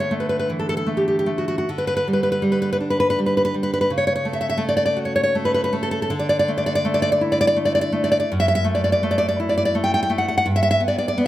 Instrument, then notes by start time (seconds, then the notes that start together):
nylon-string guitar
Already playing: D3
0.00 C#5
0.11 A3
0.20 B4
0.29 B4
0.39 B4
0.49 E3
0.59 A4
0.69 A4
0.77 A4
0.86 A3
0.97 G4
1.08 G4
1.19 G4
1.26 A3
1.38 F#4
1.48 F#4
1.58 F#4
1.69 D3
1.78 B4
1.87 B4
1.97 B4
2.07 G3
2.13 B4
2.23 B4
2.32 B4
2.42 G3
2.52 B4
2.62 B4
2.73 B4
2.80 D4
2.90 B4
3.00 B4
3.10 B4
3.19 G3
3.26 B4
3.37 B4
3.45 B4
3.54 G3
3.63 B4
3.74 B4
3.81 B4
3.90 C#3
3.98 C#5
4.07 C#5
4.16 C#5
4.25 A3
4.33 E5
4.41 E5
4.49 E5
4.57 A3
4.69 D5
4.77 D5
4.86 D5
4.97 F#4
5.05 C#5
5.16 C#5
5.23 C#5
5.35 A3
5.45 B4
5.54 B4
5.64 B4
5.73 A3
5.83 A4
5.91 A4
6.02 A4
6.10 D3
6.19 D5
6.29 D5
6.39 D5
6.48 A3
6.58 D5
6.66 D5
6.75 D5
6.85 A3
6.94 D5
7.02 D5
7.12 D5
7.21 E4
7.32 D5
7.41 D5
7.47 D5
7.56 A3
7.65 D5
7.75 D5
7.81 D5
7.92 A3
8.04 D5
8.12 D5
8.20 D5
8.32 F#2
8.40 E5
8.48 E5
8.55 E5
8.64 A3
8.75 D5
8.84 D5
8.92 D5
9.03 A3
9.11 D5
9.18 D5
9.29 D5
9.40 E4
9.49 D5
9.58 D5
9.65 D5
9.75 A3
9.84 G5
9.94 G5
10.03 G5
10.10 A3
10.18 F#5
10.28 F#5
10.38 F#5
10.46 G2
10.56 E5
10.63 E5
10.71 E5
10.80 B3
10.88 D5
10.98 D5
11.08 D5
11.18 B3